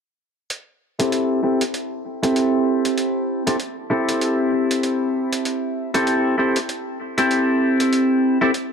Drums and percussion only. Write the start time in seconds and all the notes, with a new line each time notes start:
0.50 closed hi-hat
1.00 closed hi-hat
1.12 closed hi-hat
1.61 closed hi-hat
1.74 closed hi-hat
2.23 closed hi-hat
2.36 closed hi-hat
2.85 closed hi-hat
2.98 closed hi-hat
3.47 closed hi-hat
3.60 closed hi-hat
4.09 closed hi-hat
4.21 closed hi-hat
4.71 closed hi-hat
4.83 closed hi-hat
5.33 closed hi-hat
5.45 closed hi-hat
5.94 closed hi-hat
6.07 closed hi-hat
6.56 closed hi-hat
6.69 closed hi-hat
7.18 closed hi-hat
7.31 closed hi-hat
7.80 closed hi-hat
7.93 closed hi-hat
8.54 closed hi-hat